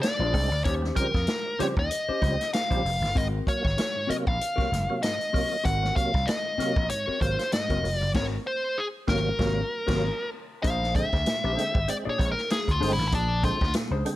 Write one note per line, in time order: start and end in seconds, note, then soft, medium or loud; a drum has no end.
0.02 0.10 C4 soft
0.02 0.10 D4 soft
0.02 0.64 D5 medium
0.02 muted clean electric guitar stroke soft
0.02 snare loud
0.02 closed hi-hat medium
0.19 0.34 A#1 medium
0.19 0.33 A#2 medium
0.19 0.33 F3 medium
0.19 0.34 D4 medium
0.19 0.35 G#4 medium
0.19 0.36 D5 medium
0.33 0.52 C2 medium
0.33 0.50 G#3 medium
0.33 0.50 C4 medium
0.33 0.50 D4 medium
0.33 muted clean electric guitar stroke soft
0.33 kick medium
0.33 open hi-hat medium
0.52 0.62 D2 medium
0.52 muted clean electric guitar stroke medium
0.64 0.89 D#2 loud
0.64 0.95 C#4 medium
0.64 0.95 G4 medium
0.64 0.95 C5 medium
0.64 0.73 C#5 medium
0.64 kick loud
0.64 closed hi-hat medium
0.82 0.88 G3 soft
0.82 0.88 C4 soft
0.82 snare soft
0.95 1.12 C#3 medium
0.95 1.12 F3 medium
0.95 1.12 G3 medium
0.95 1.12 C4 medium
0.95 1.61 A#4 medium
0.95 kick medium
0.95 closed hi-hat medium
1.14 1.25 F2 medium
1.14 muted clean electric guitar stroke soft
1.14 kick medium
1.14 snare soft
1.27 muted clean electric guitar stroke soft
1.27 snare loud
1.27 closed hi-hat medium
1.46 muted clean electric guitar stroke soft
1.59 1.75 C#3 medium
1.59 1.75 F3 medium
1.59 1.75 G3 medium
1.59 1.75 C4 loud
1.59 1.82 C#4 medium
1.59 1.77 G4 medium
1.59 1.76 C5 loud
1.59 1.65 C#5 medium
1.59 muted slap bass stroke soft
1.59 snare soft
1.59 closed hi-hat medium
1.77 1.87 D#2 medium
1.77 2.50 D#5 medium
1.77 muted clean electric guitar stroke medium
1.77 kick loud
1.91 muted clean electric guitar stroke soft
1.91 closed hi-hat loud
2.09 2.21 C#4 medium
2.09 2.22 G4 medium
2.09 2.22 C5 medium
2.09 muted slap bass stroke soft
2.21 2.35 C#2 medium
2.21 2.38 C#3 medium
2.21 2.38 F3 medium
2.21 2.38 G3 medium
2.21 2.38 C4 medium
2.21 kick medium
2.21 closed hi-hat medium
2.39 2.45 G3 soft
2.39 2.45 C4 soft
2.39 muted clean electric guitar stroke soft
2.39 snare soft
2.39 closed hi-hat soft
2.53 3.18 F5 loud
2.53 muted clean electric guitar stroke soft
2.53 snare medium
2.53 closed hi-hat medium
2.70 2.81 A#1 loud
2.70 2.83 C#3 medium
2.70 2.83 F3 medium
2.70 2.83 G3 medium
2.70 2.83 C4 medium
2.70 2.83 C#4 medium
2.70 2.84 G4 medium
2.70 2.84 C5 medium
2.70 kick medium
2.70 closed hi-hat soft
2.84 2.98 F1 medium
2.84 2.91 G3 soft
2.84 2.91 C4 soft
2.84 open hi-hat medium
3.01 3.12 G1 medium
3.01 muted clean electric guitar stroke soft
3.01 snare soft
3.15 3.40 G#1 loud
3.15 3.32 G#2 medium
3.15 3.44 C4 medium
3.15 3.45 F#4 medium
3.15 3.45 A#4 medium
3.15 3.26 D#5 loud
3.15 kick loud
3.15 closed hi-hat medium
3.47 3.63 F#3 medium
3.47 3.63 A#3 medium
3.47 4.12 C#5 medium
3.47 kick medium
3.47 closed hi-hat medium
3.64 3.75 G#1 medium
3.64 muted clean electric guitar stroke soft
3.64 kick loud
3.64 snare soft
3.77 3.85 F#3 soft
3.77 3.85 A#3 soft
3.77 muted clean electric guitar stroke soft
3.77 snare loud
3.77 closed hi-hat medium
3.95 4.08 G#2 medium
3.95 muted clean electric guitar stroke soft
4.07 4.25 C3 medium
4.07 4.25 F#3 medium
4.07 4.25 A#3 medium
4.07 4.31 C4 medium
4.07 4.25 F#4 medium
4.07 4.24 A#4 loud
4.07 4.15 D#5 loud
4.07 muted slap bass stroke soft
4.07 closed hi-hat medium
4.25 4.37 A#1 medium
4.25 5.05 F5 loud
4.25 muted clean electric guitar stroke soft
4.25 kick loud
4.38 muted clean electric guitar stroke soft
4.38 closed hi-hat loud
4.56 4.71 C3 medium
4.56 4.71 F#3 medium
4.56 4.71 A#3 medium
4.56 4.69 C4 medium
4.56 4.70 F#4 medium
4.56 4.70 A#4 medium
4.56 muted slap bass stroke soft
4.56 kick medium
4.56 snare soft
4.71 4.85 F#1 medium
4.71 4.88 G#2 medium
4.71 muted clean electric guitar stroke medium
4.71 snare soft
4.71 closed hi-hat medium
4.87 5.02 C3 medium
4.87 5.02 F#3 medium
4.87 5.02 A#3 medium
4.87 muted clean electric guitar stroke soft
5.01 5.19 G#2 medium
5.01 5.67 D#5 medium
5.01 muted clean electric guitar stroke soft
5.01 snare loud
5.01 closed hi-hat medium
5.21 closed hi-hat soft
5.33 5.50 C3 medium
5.33 5.50 F#3 medium
5.33 5.50 A#3 medium
5.33 5.52 C4 medium
5.33 5.50 F#4 medium
5.33 5.49 A#4 medium
5.33 kick medium
5.33 open hi-hat medium
5.50 5.57 F#3 soft
5.50 5.57 A#3 soft
5.50 muted clean electric guitar stroke soft
5.64 5.89 G#1 loud
5.64 5.81 G#2 medium
5.64 5.94 C4 medium
5.64 5.94 F#4 medium
5.64 5.94 A#4 medium
5.64 5.94 F#5 loud
5.64 kick loud
5.64 closed hi-hat medium
5.83 5.88 F#3 soft
5.83 5.88 A#3 soft
5.83 snare soft
5.96 6.12 C3 medium
5.96 6.12 F#3 medium
5.96 6.13 A#3 medium
5.96 6.28 F5 loud
5.96 kick loud
5.96 closed hi-hat medium
6.14 6.25 C2 medium
6.14 muted clean electric guitar stroke medium
6.14 kick loud
6.14 snare soft
6.27 6.90 D#5 medium
6.27 muted clean electric guitar stroke soft
6.27 snare loud
6.27 closed hi-hat medium
6.46 muted clean electric guitar stroke soft
6.58 6.75 C3 medium
6.58 6.75 F#3 medium
6.58 6.75 A#3 loud
6.58 6.81 C4 medium
6.58 6.77 F#4 medium
6.58 6.76 A#4 loud
6.58 muted slap bass stroke soft
6.58 snare soft
6.58 closed hi-hat medium
6.76 6.87 A#1 medium
6.76 muted clean electric guitar stroke soft
6.76 kick loud
6.89 7.06 G#2 medium
6.89 7.21 C#5 medium
6.89 muted clean electric guitar stroke soft
6.89 closed hi-hat loud
7.08 7.20 C4 medium
7.08 7.20 F#4 medium
7.08 7.21 A#4 loud
7.08 muted slap bass stroke soft
7.21 7.35 G#1 medium
7.21 7.37 C3 medium
7.21 7.37 F#3 medium
7.21 7.38 A#3 medium
7.21 7.50 C5 medium
7.21 muted clean electric guitar stroke soft
7.21 kick medium
7.21 closed hi-hat medium
7.38 7.44 F#3 soft
7.38 7.44 A#3 soft
7.38 muted clean electric guitar stroke soft
7.38 snare soft
7.38 closed hi-hat soft
7.52 7.69 G#2 medium
7.52 7.94 D#5 medium
7.52 muted clean electric guitar stroke soft
7.52 snare loud
7.52 closed hi-hat medium
7.70 7.80 F#1 loud
7.70 7.82 C3 medium
7.70 7.82 F#3 medium
7.70 7.82 A#3 medium
7.70 7.83 C4 medium
7.70 7.84 F#4 medium
7.70 7.84 A#4 medium
7.70 kick medium
7.70 closed hi-hat soft
7.83 7.97 F1 medium
7.83 7.90 F#3 soft
7.83 7.90 A#3 soft
7.83 muted clean electric guitar stroke soft
7.83 open hi-hat medium
7.94 8.11 D5 medium
8.01 8.14 F#1 medium
8.01 muted clean electric guitar stroke soft
8.15 8.37 G#1 loud
8.15 8.37 C4 loud
8.15 8.37 F#4 medium
8.15 8.38 A#4 loud
8.15 8.24 C#5 loud
8.15 kick loud
8.15 snare loud
8.15 crash medium
8.47 8.79 C5 medium
8.78 8.86 G#4 medium
9.07 9.30 G#1 loud
9.07 9.29 C3 loud
9.07 9.30 F#3 loud
9.07 9.30 A#3 loud
9.07 9.30 C4 loud
9.07 9.30 F#4 loud
9.07 10.29 A#4 medium
9.07 9.31 A#4 loud
9.07 kick loud
9.07 snare loud
9.39 9.61 G#1 medium
9.39 9.61 C3 loud
9.39 9.61 F#3 loud
9.39 9.61 A#3 loud
9.39 9.62 C4 loud
9.39 9.62 F#4 loud
9.39 9.61 A#4 loud
9.39 kick loud
9.39 snare loud
9.87 10.09 G#1 loud
9.87 10.08 C3 loud
9.87 10.08 F#3 loud
9.87 10.08 A#3 loud
9.87 10.09 C4 loud
9.87 10.09 F#4 loud
9.87 10.08 A#4 medium
9.87 kick loud
9.87 snare loud
9.87 crash medium
10.63 11.01 A#1 loud
10.63 10.80 A#2 medium
10.63 10.93 D4 medium
10.63 10.93 G#4 medium
10.63 10.93 C5 medium
10.63 10.95 F5 loud
10.63 kick loud
10.63 closed hi-hat medium
10.83 snare soft
10.95 11.11 D3 loud
10.95 11.11 G#3 medium
10.95 11.11 C4 loud
10.95 11.92 E5 loud
10.95 kick loud
10.95 closed hi-hat medium
11.12 11.23 D2 medium
11.12 11.18 G#3 soft
11.12 11.18 C4 soft
11.12 muted clean electric guitar stroke soft
11.12 kick medium
11.12 snare soft
11.25 11.42 A#2 medium
11.25 muted clean electric guitar stroke soft
11.25 snare loud
11.25 closed hi-hat medium
11.44 11.54 A#1 medium
11.44 11.56 D4 medium
11.44 11.57 G#4 medium
11.44 11.57 C5 medium
11.56 11.73 D3 medium
11.56 11.73 G#3 medium
11.56 11.73 C4 medium
11.56 muted clean electric guitar stroke soft
11.56 snare soft
11.56 closed hi-hat medium
11.74 11.85 G#1 medium
11.74 11.80 G#3 soft
11.74 11.80 C4 soft
11.74 muted clean electric guitar stroke medium
11.74 kick loud
11.88 12.04 G#3 medium
11.88 12.04 C4 medium
11.88 11.95 D5 loud
11.88 muted clean electric guitar stroke soft
11.88 closed hi-hat medium
12.05 12.18 A#2 medium
12.05 12.19 D4 medium
12.05 12.19 G#4 medium
12.05 12.21 D5 medium
12.05 muted slap bass stroke soft
12.09 12.29 C#5 medium
12.18 12.33 A#1 medium
12.18 12.35 G#3 medium
12.18 12.35 C4 medium
12.18 muted clean electric guitar stroke soft
12.18 kick medium
12.18 closed hi-hat medium
12.31 12.51 A#4 medium
12.38 muted clean electric guitar stroke soft
12.38 snare soft
12.50 12.73 G#4 medium
12.50 muted clean electric guitar stroke soft
12.50 snare loud
12.50 closed hi-hat medium
12.67 12.79 D2 medium
12.67 12.93 F4 medium
12.67 muted clean electric guitar stroke soft
12.67 kick medium
12.67 closed hi-hat soft
12.80 12.95 G1 medium
12.80 12.97 D3 medium
12.80 12.97 G#3 medium
12.80 12.97 C4 loud
12.80 13.04 D4 medium
12.80 12.98 G#4 medium
12.80 12.97 C5 medium
12.80 open hi-hat medium
12.93 13.07 E4 medium
12.98 13.13 G#1 medium
12.98 muted clean electric guitar stroke soft
12.98 snare soft
13.08 13.13 E4 medium
13.12 13.50 A#1 loud
13.12 13.29 A#2 soft
13.12 13.42 D4 medium
13.12 13.43 D4 medium
13.12 13.42 G#4 medium
13.12 13.42 D5 medium
13.12 kick loud
13.12 closed hi-hat medium
13.43 13.60 D3 loud
13.43 13.60 G#3 medium
13.43 13.60 C4 loud
13.43 13.73 F4 medium
13.43 kick loud
13.43 closed hi-hat medium
13.61 13.72 D2 medium
13.61 13.67 G#3 soft
13.61 13.67 C4 soft
13.61 muted clean electric guitar stroke soft
13.61 kick loud
13.61 snare soft
13.74 13.91 A#2 medium
13.74 muted clean electric guitar stroke soft
13.74 snare loud
13.74 closed hi-hat medium
13.91 14.02 C#2 medium
13.91 14.05 D4 medium
13.91 14.05 G#4 medium
13.91 14.06 C5 medium
14.05 14.16 D3 medium
14.05 14.16 G#3 medium
14.05 14.16 C4 medium
14.05 muted clean electric guitar stroke soft
14.05 closed hi-hat medium